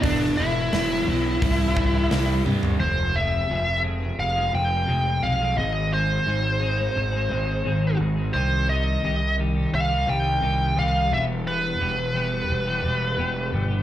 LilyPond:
<<
  \new Staff \with { instrumentName = "Lead electric guitar" } { \time 4/4 \key c \major \tempo 4 = 87 <d' d''>8 <e' e''>2. r8 | \key f \lydian c''8 e''4 r8 f''8 g''4 f''8 | dis''8 bis'2. r8 | c''8 ees''4 r8 f''8 g''4 f''8 |
e''8 b'2. r8 | }
  \new Staff \with { instrumentName = "Clean electric guitar" } { \time 4/4 \key c \major r1 | \key f \lydian <f, c f aes c' aes'>8 <f aes c' aes'>8 <f, c f aes c' aes'>8 <f aes c' aes'>16 <f aes c' aes'>8 <f aes c' aes'>16 <f aes c' aes'>8 <f, c f aes c' aes'>16 <f aes c' aes'>16 <f aes c' aes'>16 <f aes c' aes'>16 | <gis, dis gis bis dis' gis'>8 <gis bis dis' gis'>8 <gis, dis gis bis dis' gis'>8 <gis bis dis' gis'>16 <gis bis dis' gis'>8 <gis bis dis' gis'>16 <gis bis dis' gis'>8 <gis, dis gis bis dis' gis'>16 <gis bis dis' gis'>16 <gis bis dis' gis'>16 <gis bis dis' gis'>16 | <c ees g ees' g'>8 <ees g ees' g'>8 <c ees g ees' g'>8 <ees g ees' g'>16 <g ees' g'>8 <g ees' g'>16 <ees g ees' g'>8 <c ees g ees' g'>16 <g ees' g'>16 <ees g ees' g'>16 <g ees' g'>16 |
<e, b, e g b g'>8 <e g b g'>8 <e, b, e g b g'>8 <e g b g'>16 <e g b g'>8 <e g b g'>16 <e g b g'>8 <e, b, e g b g'>16 <e g b g'>16 <e g b g'>16 <e g b g'>16 | }
  \new Staff \with { instrumentName = "Overdriven electric guitar" } { \clef bass \time 4/4 \key c \major <e, b, e>4 <e, b, e>8 <e, b, e>8 <c g c'>4 <c g c'>8 <c g c'>8 | \key f \lydian r1 | r1 | r1 |
r1 | }
  \new Staff \with { instrumentName = "Picked electric bass" } { \clef bass \time 4/4 \key c \major e,,8 e,,8 e,,8 b,,8 c,8 c,8 c,8 g,8 | \key f \lydian f,,4 f,,4 f,,8 f,,8 f,,8 b,,8 | gis,,4 gis,,4 gis,,8 gis,,8 gis,,8 gis,,8 | c,4 c,4 c,8 c,8 c,8 c,8 |
e,,4 e,,4 e,,8 e,,8 e,,8 g,,8 | }
  \new DrumStaff \with { instrumentName = "Drums" } \drummode { \time 4/4 <hho bd>4 <hho sn>4 <hho bd>8 bd8 <hho sn>8 tommh16 tomfh16 | r4 r4 r4 r4 | r4 r4 r4 r4 | r4 r4 r4 r4 |
r4 r4 r4 r4 | }
>>